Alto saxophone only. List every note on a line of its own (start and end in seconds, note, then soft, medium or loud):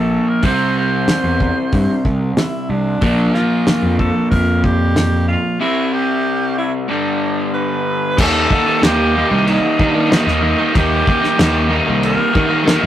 0.00 0.30 A4 medium
0.29 0.46 A#4 medium
0.45 0.76 C5 loud
0.78 2.02 C5 medium
2.38 2.71 E4 medium
2.70 3.34 D4 medium
3.34 3.94 F4 medium
3.99 4.29 A4 medium
4.31 4.65 A#4 loud
4.64 5.28 G4 loud
5.28 5.58 F4 medium
5.61 5.95 E4 loud
5.93 6.57 G4 loud
6.58 6.73 E4 medium
6.90 7.50 D4 medium
7.54 8.21 B4 loud
8.20 8.85 A4 loud
8.84 9.49 G4 loud
9.48 9.82 D#4 medium
9.81 10.14 D4 loud
10.13 10.76 D#4 medium
10.78 11.73 G4 loud
12.06 12.64 A#4 loud
12.70 12.86 A#4 loud